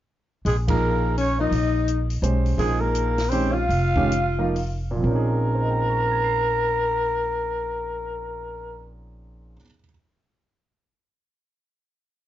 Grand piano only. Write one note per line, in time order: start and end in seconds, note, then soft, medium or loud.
0.67 1.13 F3 medium
0.67 1.14 A#3 medium
0.67 1.14 D#4 medium
0.67 1.14 G#4 medium
1.39 1.50 F3 medium
1.39 1.51 A#3 medium
1.39 1.51 D#4 medium
1.39 1.51 F4 medium
2.22 2.76 G#3 medium
2.22 2.76 C#4 medium
2.22 2.77 G4 medium
2.22 2.77 C5 medium
2.58 3.13 F3 medium
2.58 3.13 A#3 medium
2.58 3.13 D#4 medium
2.58 3.13 G#4 medium
3.31 3.53 D#3 medium
3.31 3.53 G#3 medium
3.31 3.53 C#4 medium
3.31 3.54 G4 medium
3.95 4.09 D#3 medium
3.95 4.09 G#3 medium
3.95 4.10 C#4 medium
3.95 4.10 G4 medium
4.38 4.53 F3 medium
4.38 4.54 A#3 medium
4.38 4.54 D#4 medium
4.38 4.54 A#4 medium
4.91 9.54 A#2 medium
4.96 9.56 F3 medium
5.00 9.58 C4 medium
5.06 9.61 C#4 medium
5.11 9.64 D#4 medium
5.16 9.66 G#4 medium
5.55 9.56 C5 soft
5.62 9.60 D#5 soft
5.71 9.64 G5 soft
5.80 9.69 A#5 soft
5.90 9.73 C#6 soft
6.00 9.79 F6 soft
6.11 9.84 G#6 soft
6.24 9.91 C7 soft